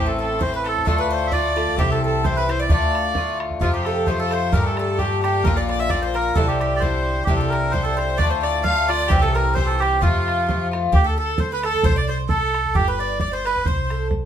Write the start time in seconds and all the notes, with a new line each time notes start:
Already playing: A1 A2 E3 C4 E4
0.06 A4
0.17 A4
0.39 A2 E3 C4 E4 C5, bodhran
0.52 B4
0.64 A4, bodhran
0.68 A4
0.77 bodhran
0.85 D2 A2 D3 A3 F4 A4, bodhran
0.98 B4
1.10 C5
1.27 E5
1.31 A2 D3 A3 F4 D5, bodhran
1.56 D3 A3 F4 A4, bodhran
1.68 bodhran
1.76 C2 G2 E3 C4 E4 G4, bodhran
1.91 A4
2.04 A4
2.23 G2 E3 C4 E4 C5, bodhran
2.33 B4 C5
2.37 B4
2.48 E3 C4 E4 C5, bodhran
2.59 D5
2.69 D2 A2 D3 A3 F4 D5, bodhran
2.95 bodhran
3.15 A2 D3 A3 F4, bodhran
3.40 bodhran
3.50 bodhran
3.61 F2 C3 F3 A3 F4, bodhran
3.73 G4
3.84 A4, bodhran
4.06 C3 F3 A3 F4 C5, bodhran
4.19 A4
4.31 C5, bodhran
4.52 G2 A#2 D3 A3 G4 A#4, bodhran
4.66 A4
4.77 A4, bodhran
4.98 A#2 D3 A3 G4, bodhran
5.02 G4
5.22 G4, bodhran
5.43 A#1 A#2 D3 A#3 F4 A#4, bodhran
5.56 D5
5.63 D5
5.69 D5, bodhran
5.79 E5
5.89 A#2 D3 A#3 D5, bodhran
5.93 F4
6.01 C5
6.14 A#4, bodhran
6.34 C2 G2 D3 C4 E4 A4, bodhran
6.47 G4
6.60 G4, bodhran
6.76 C5 D5
6.81 G2 D3 C4 E4 C5, bodhran
7.24 C2 G2 D3 G4, bodhran
7.29 C4 E4
7.36 A4
7.41 A4
7.49 A#4, bodhran
7.71 G2 D3 C4 C5, bodhran
7.75 E4
7.83 A4
7.96 C5, bodhran
8.17 D2 A2 D3 A3 F4 D5, bodhran
8.30 C5
8.42 D5, bodhran
8.63 A2 D3 A3 F5, bodhran
8.67 F4
8.88 A3 F4 D5, bodhran
8.93 D3
9.08 C2 A#2 E3 G4, bodhran
9.12 C4 G4
9.21 A4
9.34 A#4, bodhran
9.54 A#2 E3 C4 C5, bodhran
9.59 G4
9.66 A4
9.80 G4, bodhran
10.00 F2 C3 F3 A3 F4, bodhran
10.28 bodhran
10.46 C3 F3 A3 F4, bodhran
10.71 F3 A3 F4, bodhran
10.92 D2 G4, bodhran
11.04 A4
11.18 A4
11.38 C5, bodhran
11.52 B4
11.63 A4, bodhran
11.74 bodhran
11.83 C2 C5, bodhran
11.96 D5
12.08 C5
12.29 A4, bodhran
12.54 bodhran
12.65 bodhran
12.75 G1 G4, bodhran
12.88 B4
12.99 D5
13.20 D5, bodhran
13.33 C5
13.45 B4, bodhran
13.56 bodhran
13.65 C2 C5, bodhran
13.90 A4, bodhran
14.11 bodhran